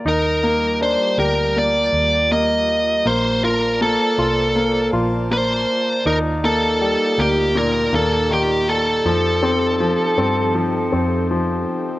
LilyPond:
<<
  \new Staff \with { instrumentName = "Lead electric guitar" } { \time 4/4 \key ees \lydian \tempo 4 = 80 bes'4 c''8 bes'8 d''4 ees''4 | c''8 bes'8 a'4. r8 c''4 | bes'8 a'4 g'8 bes'8 a'8 g'8 a'8~ | a'2. r4 | }
  \new Staff \with { instrumentName = "Analog synth pad" } { \time 4/4 \key ees \lydian << { <g f' g'>1 | <c'' d'' a''>1 | <ees' g' d''>1 | <f ees' a'>1 | } \\ { bes1~ | bes1~ | bes1 | c'1 | } >> }
  \new Staff \with { instrumentName = "Grand piano" } { \time 4/4 \key ees \lydian ees'8 bes8 d'8 g'8 bes4 bes4 | bes8 f'8 bes8 f'8 bes8 f'8 bes4 | ees'8 bes8 g8 bes8 bes,8 bes8 ees4 | f8 c'8 f8 c'8 f8 c'8 f4 | }
  \new Staff \with { instrumentName = "Fingered electric bass" } { \clef bass \time 4/4 \key ees \lydian ees,4~ ees,16 r16 d,4 ees,4. | bes,,4~ bes,,16 r16 c,4 bes,,4 r8 | ees,4~ ees,16 r16 d,4 ees,4. | f,4~ f,16 r16 g,4 f,4 r8 | }
>>